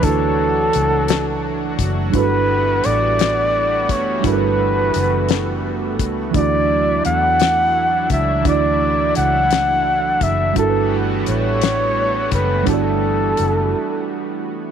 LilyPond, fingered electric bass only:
\new Staff \with { instrumentName = "Fingered electric bass" } { \clef bass \time 6/8 \key g \lydian \tempo 4. = 57 d,4 cis,4. fis,,8 | g,,4 a,,4. fis,,8 | g,,4 fis,,4. cis,8 | d,4 e,4. cis,8 |
d,4 cis,4. fis,,8 | g,,4 a,,4. fis,,8 | g,,4 fis,,8 r4. | }